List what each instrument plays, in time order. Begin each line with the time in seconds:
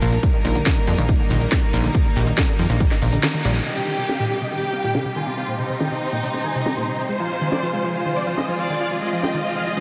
Already playing: string section F3 A#3 D4 A#4
0.02 analog synth bass A#1, synth pluck A#2, open hi-hat, shaker
0.12 synth pluck A#2, closed hi-hat, shaker
0.23 synth pluck G3, string section G3 A#3 D#4, kick, closed hi-hat, shaker
0.34 synth pluck D#3
0.45 analog synth bass A#1, synth pluck D#4, open hi-hat, shaker
0.55 synth pluck D3, closed hi-hat, shaker
0.66 synth pluck D#3, kick, snare, closed hi-hat, shaker
0.77 synth pluck D#3
0.88 analog synth bass F2, synth pluck G3, open hi-hat, shaker
0.98 analog synth bass A#1, synth pluck D#3, closed hi-hat, shaker
1.09 synth pluck D#4, kick, closed hi-hat, shaker
1.20 synth pluck D3
1.30 analog synth bass A#1, synth pluck D#3, open hi-hat, shaker
1.41 synth pluck D#3, closed hi-hat, shaker
1.52 synth pluck G3, kick, snare, closed hi-hat, shaker
1.63 synth pluck D#3
1.73 analog synth bass A#1, synth pluck D#4, open hi-hat, shaker
1.84 synth pluck D3, closed hi-hat, shaker
1.95 synth pluck D#3, kick, closed hi-hat, shaker
2.06 synth pluck D#3
2.16 analog synth bass A#1, synth pluck G3, open hi-hat, shaker
2.27 synth pluck D#3, closed hi-hat, shaker
2.38 synth pluck D#4, kick, snare, closed hi-hat, shaker
2.48 synth pluck D3
2.59 analog synth bass F2, synth pluck D#3, open hi-hat, shaker
2.70 analog synth bass A#1, synth pluck D#3, closed hi-hat, shaker
2.80 synth pluck G3, kick, closed hi-hat, shaker
2.91 synth pluck D#3, snare
3.02 analog synth bass A#1, synth pluck D#4, open hi-hat, shaker
3.13 synth pluck D3, closed hi-hat, shaker
3.23 synth pluck D#3, snare, closed hi-hat, shaker
3.34 synth pluck D#3
3.45 analog synth bass A#1, synth pluck G3, open hi-hat, shaker
3.55 synth pluck D#3, closed hi-hat, shaker
3.66 synth pluck C3, string section C3 G3 D#4 G4, violin section G4, supersaw synth D#5, shaker
3.77 synth pluck C3, supersaw synth G4
3.88 synth pluck D#3, supersaw synth G4, shaker
3.98 synth pluck C3, supersaw synth G4, shaker
4.09 synth pluck C4, supersaw synth F5, snare, shaker
4.20 synth pluck A#2, supersaw synth G4
4.30 synth pluck C3, supersaw synth G4, shaker
4.41 synth pluck C3, supersaw synth D#5, shaker
4.52 synth pluck D#3, violin section G4, supersaw synth G4, shaker
4.63 synth pluck C3, supersaw synth G4
4.73 synth pluck C4, supersaw synth F5, shaker
4.84 synth pluck A#2, supersaw synth G4, shaker
4.95 synth pluck C3, supersaw synth G5, snare, shaker
5.05 synth pluck C3, supersaw synth G4
5.16 synth pluck D#3, violin section F4, supersaw synth G#5
5.27 synth pluck C3, supersaw synth G4, shaker
5.37 synth pluck C4, supersaw synth G5, shaker
5.48 synth pluck A#2, supersaw synth C5
5.59 synth pluck C3, violin section D#4, supersaw synth C5, shaker
5.70 synth pluck C3, supersaw synth C5, shaker
5.80 synth pluck D#3, supersaw synth G5, snare, shaker
5.91 synth pluck C3, supersaw synth C5
6.02 synth pluck C4, supersaw synth C5
6.12 synth pluck A#2, supersaw synth G5
6.23 synth pluck C3, supersaw synth C5
6.34 synth pluck C3, supersaw synth C5, snare
6.45 synth pluck D#3, supersaw synth G#5
6.55 synth pluck C3, supersaw synth C5
6.66 synth pluck C4, supersaw synth A#5, snare
6.77 synth pluck A#2, supersaw synth C5
6.88 synth pluck C3, supersaw synth C6
6.98 synth pluck C3, supersaw synth C5
7.09 synth pluck G#3, string section G#3 F4 G#4, violin section C5, supersaw synth C5
7.20 synth pluck F3, supersaw synth F4
7.30 synth pluck F4, supersaw synth F4
7.41 synth pluck D#3, supersaw synth F4
7.52 synth pluck F3, supersaw synth D5, snare
7.63 synth pluck F3, supersaw synth F4
7.73 synth pluck G#3, supersaw synth F4
7.84 synth pluck F3, supersaw synth C5
7.95 synth pluck F4, supersaw synth F4, violin section C5
8.06 synth pluck D#3, supersaw synth F4
8.16 synth pluck F3, supersaw synth D5
8.27 synth pluck F3, supersaw synth F4
8.38 synth pluck G#3, supersaw synth D#5, snare
8.48 synth pluck F3, supersaw synth F4
8.59 synth pluck F4, violin section D5, supersaw synth F5
8.70 synth pluck D#3, supersaw synth F4
8.81 synth pluck F3, supersaw synth F5
8.91 synth pluck F3, supersaw synth F4
9.02 synth pluck G#3, supersaw synth F4, violin section D#5
9.13 synth pluck F3, supersaw synth F4
9.23 synth pluck F4, supersaw synth G5, snare
9.34 synth pluck D#3, supersaw synth F4
9.45 synth pluck F3, supersaw synth F4
9.56 synth pluck F3, supersaw synth F5
9.66 synth pluck G#3, supersaw synth F4
9.77 synth pluck F3, supersaw synth F4, snare